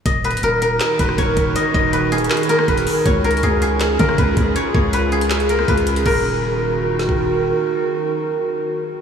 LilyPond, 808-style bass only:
\new Staff \with { instrumentName = "808-style bass" } { \clef bass \time 4/4 \key ees \minor \tempo 4 = 160 ees,,8. des,,16 ees,,4 r8 ees,,8 ees,,8 ees,,8 | r8 ees,,4. r4 ees,,8 r8 | des,4 des,4. des8 des,8 des,8 | r8 des,2~ des,8 des,4 |
ees,,1 | r1 | }